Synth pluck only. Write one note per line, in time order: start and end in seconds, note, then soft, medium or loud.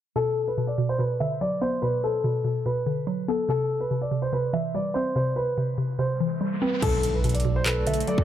0.16 0.56 B2 loud
0.58 0.77 B2 medium
0.78 0.98 B2 medium
0.99 1.82 B2 medium
1.20 2.24 D3 medium
1.41 2.45 F#3 medium
1.61 2.66 B3 medium
1.83 2.23 B2 medium
2.24 2.43 B2 medium
2.44 2.65 B2 medium
2.66 3.49 B2 medium
2.86 3.49 D3 medium
3.07 3.49 F#3 medium
3.28 3.49 B3 medium
3.49 3.90 C3 medium
3.91 4.10 C3 medium
4.11 4.31 C3 medium
4.33 5.15 C3 medium
4.53 5.57 E3 medium
4.75 5.78 G3 medium
4.96 5.99 C4 medium
5.16 5.56 C3 loud
5.58 5.77 C3 medium
5.78 5.98 C3 medium
5.99 6.82 C3 medium
6.20 6.83 E3 medium
6.41 6.82 G3 medium
6.62 6.83 C4 medium
6.83 7.23 B2 loud
7.24 7.43 B2 medium
7.45 7.65 B2 medium
7.66 8.24 B2 medium
7.87 8.24 D3 medium
8.08 8.24 F#3 medium